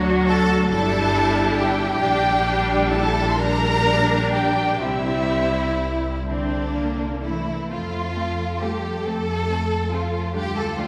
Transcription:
Already playing: D2 F#3 D4 F#4
0.27 A4 A5
0.70 G1 G3 D4 E4 A4 A5
1.57 G4 G5
2.01 A#1 G3 D4
2.44 D4
2.90 E4 A4 A5
3.30 C6
3.38 G3 D4 A#4 A#5
4.33 G4 G5
4.81 C2 G3 C4 E4 E5
6.27 D3 C4 D4
6.75 A#3
7.22 E3 A3 E4
7.70 F2 F3 A3 C4 F4 A4
8.15 A3 C4
8.61 G3 A3 C4 G4
9.05 F2 A3 C4 A4
9.50 A3 C4
9.92 F3 A3 C4 F4
10.34 D2 G3 A3 D4 F4 G4
10.56 A3 A4
10.77 F3 A3 D4 F4

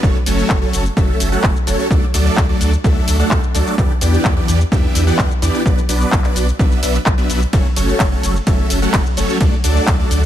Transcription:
0.03 F#1 F#3 A3 C#4 A4 C#5, kick, shaker
0.26 F#1 F#3 A3 C#4 A4 C#5, open hi-hat, shaker
0.39 shaker
0.50 F#1, kick, clap, shaker
0.62 F#3 A3 C#4 A4 C#5
0.73 F#1, open hi-hat, shaker
0.86 shaker
0.97 F#1 F#3 A3 C#4 A4 E5, kick, shaker
1.20 F#1, open hi-hat, shaker
1.32 F#3 A3 C#4 A4 F#5, shaker
1.44 F#1, kick, clap, shaker
1.56 shaker
1.67 F#1 F#3 A3 C#4 A4 C#5, open hi-hat, shaker
1.80 shaker
1.91 D2 F#3 A3 D4 A4 D5, kick, shaker
2.14 D2 F#3 A3 D4 A4 D5, open hi-hat, shaker
2.26 shaker
2.37 D2, kick, clap, shaker
2.49 F#3 A3 D4 A4 D5
2.61 D2, open hi-hat, shaker
2.73 shaker
2.84 D2 F#3 A3 D4 A4 E5, kick, shaker
3.08 D2, open hi-hat, shaker
3.19 F#3 A3 D4 A4 F#5, shaker
3.31 D2, kick, clap, shaker
3.43 shaker
3.55 D2 F#3 A3 D4 A4 D5, open hi-hat, shaker
3.67 shaker
3.78 E2 E3 B3 D4 G4 D5, kick, shaker
4.01 E2 E3 B3 D4 G4 D5, open hi-hat, shaker
4.14 shaker
4.25 E2, kick, clap, shaker
4.37 E3 B3 D4 G4 D5
4.48 E2, open hi-hat, shaker
4.61 shaker
4.72 E2 E3 B3 D4 G4 E5, kick, shaker
4.95 E2, open hi-hat, shaker
5.07 E3 B3 D4 G4 F#5, shaker
5.19 E2, kick, clap, shaker
5.31 shaker
5.42 E2 E3 B3 D4 G4 D5, open hi-hat, shaker
5.55 shaker
5.66 B1 F#3 B3 D4 B4 D5, kick, shaker
5.78 shaker
5.89 B1 F#3 B3 D4 B4 D5, open hi-hat, shaker
6.01 shaker
6.12 B1, kick, clap, shaker
6.24 F#3 B3 D4 B4 D5, clap, shaker
6.36 B1, open hi-hat, shaker
6.48 shaker
6.59 B1 F#3 B3 D4 B4 E5, kick, shaker
6.72 shaker
6.83 B1 F#3 B3 D4 B4 E5, open hi-hat, shaker
6.95 shaker
7.06 B1, kick, clap, shaker
7.18 F#3 B3 D4 B4 E5, shaker
7.30 B1, open hi-hat, shaker
7.42 shaker
7.53 F#1 F#3 A3 C#4 A4 C#5, kick, ride, shaker
7.76 F#1 F#3 A3 C#4 A4 C#5, open hi-hat, shaker
7.89 shaker
8.00 F#1, kick, clap, ride, shaker
8.12 F#3 A3 C#4 A4 C#5
8.23 F#1, open hi-hat, shaker
8.36 shaker
8.47 F#1 F#3 A3 C#4 A4 E5, kick, ride, shaker
8.70 F#1, open hi-hat, shaker
8.82 F#3 A3 C#4 A4 F#5, shaker
8.94 F#1, kick, clap, ride, shaker
9.06 shaker
9.17 F#1 F#3 A3 C#4 A4 C#5, open hi-hat, shaker
9.29 shaker
9.41 D2 F#3 A3 D4 A4 D5, kick, ride, shaker
9.64 D2 F#3 A3 D4 A4 D5, open hi-hat, shaker
9.76 shaker
9.87 D2, kick, clap, ride, shaker
9.99 F#3 A3 D4 A4 D5
10.11 D2, open hi-hat, shaker

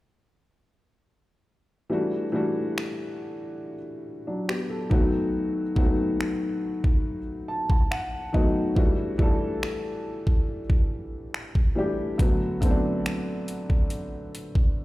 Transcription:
1.90 E3 G3 A3 D4 F#4
2.32 E3 G3 A3 D4 F#4
2.78 finger snap
4.27 F#3 D4
4.49 B3 G4, finger snap
4.70 A4
4.90 D#3 F#3 A3 B3 F#4, kick
5.75 D#3 F#3 A3 B3 F#4, kick
6.21 finger snap
6.84 kick
7.48 A5
7.70 kick
7.91 F#5, finger snap
8.32 D#3 F#3 A3 B3 F#4 D#5, kick
8.75 E3 G3 A3 D4 F#4, kick
9.18 E3 G3 A3 D4 A4, kick
9.63 finger snap
10.27 kick
10.70 kick
11.34 finger snap
11.55 kick
11.75 E3 G3 A3 D4 G4
12.18 D3 F#3 A3 B3 F#4, kick, closed hi-hat
12.61 D3 F#3 A3 B3 C4, kick, closed hi-hat
12.71 D4
13.06 finger snap, closed hi-hat
13.48 closed hi-hat
13.70 kick
13.90 closed hi-hat
14.35 closed hi-hat
14.55 kick

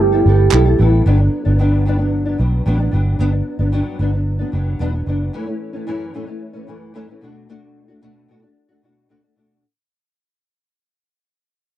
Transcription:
Already playing: G1 A3 B3 E4 A4 B4
0.01 G4
0.12 B3 E4 A4
0.26 G1 G3 B3 E4 A4
0.51 B1 G3 B3 E4 A4, clap
0.65 B3 E4 A4
0.79 A1 G3 B3 E4 A4
1.06 G1 G2 F#3 B3 D4
1.20 F#3 B3 D4
1.45 G1 F#3 B3 D4
1.59 G2 F#3 B3 D4
1.85 G2 F#3 B3 D4
1.98 F#3 B3 D4
2.26 F#3 B3 D4
2.38 B1 G2 F#3 B3 D4
2.66 A1 G2 F#3 B3 D4
2.79 F#3 B3 D4
2.91 G1 G2 F#3 B3 D4
3.19 G1 G2 F#3 B3 D4
3.32 F#3 B3 D4
3.59 G1 F#3 B3 D4
3.72 G2 F#3 B3 D4
3.99 G1 G2 F#3 B3 D4
4.14 F#3 B3
4.39 F#3 B3 D4
4.52 F#1 G2 F#3 B3 D4
4.79 E1 G2 F#3 B3 D4
4.93 F#3 B3 D4
5.06 F#1 G2 F#3 B3 D4
5.33 F#2 E3 A3 C#4
5.47 E3 A3 C#4
5.73 E3 A3 C#4
5.87 F#2 E3 A3 C#4
6.14 F#2 E3 A3 C#4
6.27 E3 A3 C#4
6.53 E3 A3 C#4
6.67 F#2 E3 A3 C#4
6.94 F#2 E3 A3 C#4
7.08 E3 A3 C#4
7.21 B2 A3 D4 F#4
7.49 B2 A3 D4 F#4
7.88 A3 D4 F#4
8.02 B2 A3 D4 F#4
8.28 B2 A3 D4 F#4
8.42 A3 D4 F#4
8.69 A3 D4 F#4
8.82 B2 A3 D4 F#4
9.09 B2 A3 D4 F#4
9.22 A3 F#4
9.36 B2 A3 D4 F#4

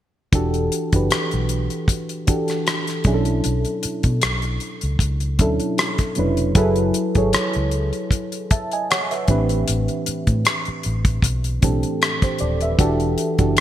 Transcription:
0.32 E1 E3 D4 F#4 G4 A4, kick, closed hi-hat
0.54 closed hi-hat
0.72 closed hi-hat
0.93 F#1 E3 D4 F#4 G4 B4, kick, closed hi-hat
1.11 muted fingered electric bass stroke, cross-stick, closed hi-hat
1.31 B1, closed hi-hat
1.49 closed hi-hat
1.70 closed hi-hat
1.88 kick, closed hi-hat
2.09 closed hi-hat
2.26 E3 D4 F#4 G4 A4, kick, closed hi-hat
2.48 cross-stick, closed hi-hat
2.67 cross-stick, closed hi-hat
2.87 cross-stick, closed hi-hat
3.04 B1 B2 F#3 C#4 D4 E4 G#4, kick, closed hi-hat
3.14 A4
3.25 closed hi-hat
3.44 B1, closed hi-hat
3.65 closed hi-hat
3.83 muted fingered electric bass stroke, closed hi-hat
4.03 B2, kick, closed hi-hat
4.22 B1, cross-stick, closed hi-hat
4.42 closed hi-hat
4.60 closed hi-hat
4.81 C#2, closed hi-hat
4.99 C#2, kick, closed hi-hat
5.20 closed hi-hat
5.38 D2 B2 F#3 C#4 D4 E4 A4, kick, closed hi-hat
5.60 closed hi-hat
5.78 cross-stick, closed hi-hat
5.98 kick, cross-stick, closed hi-hat
6.15 F1 B2 F#3 C#4 D4 E4, closed hi-hat
6.19 B4
6.37 closed hi-hat
6.55 F#1 F#3 E4 G#4 A4 B4, kick, closed hi-hat
6.76 closed hi-hat
6.94 closed hi-hat
7.15 G#1 F#3 E4 G#4 A4 C#5, kick, closed hi-hat
7.33 cross-stick, closed hi-hat
7.53 C#2, closed hi-hat
7.71 closed hi-hat
7.93 closed hi-hat
8.11 kick, closed hi-hat
8.32 closed hi-hat
8.51 E5 A5, kick, closed hi-hat
8.72 D#5 G#5, closed hi-hat
8.90 C#5 F#5, cross-stick, closed hi-hat
9.11 B4 E5, cross-stick, closed hi-hat
9.28 A1 A2 E3 C4 D4 G4 B4, kick, closed hi-hat
9.49 closed hi-hat
9.68 A1, closed hi-hat
9.88 closed hi-hat
10.06 muted fingered electric bass stroke, closed hi-hat
10.27 A2, kick, closed hi-hat
10.45 cross-stick, closed hi-hat
10.65 muted fingered electric bass stroke, closed hi-hat
10.83 A1, closed hi-hat
11.05 kick, closed hi-hat
11.22 B1, kick, closed hi-hat
11.44 closed hi-hat
11.61 B1 A2 E3 C4 D4 G4 A4, kick, closed hi-hat
11.83 closed hi-hat
12.02 cross-stick, closed hi-hat
12.22 G4 C5, kick, cross-stick, closed hi-hat
12.39 D#1 A4 D5, closed hi-hat
12.61 B4 E5, closed hi-hat
12.78 E1 E3 D4 F#4 G4 A4, kick, closed hi-hat
13.00 closed hi-hat
13.18 closed hi-hat
13.38 F#1 E3 D4 F#4 G4 A4, kick, closed hi-hat
13.57 closed hi-hat

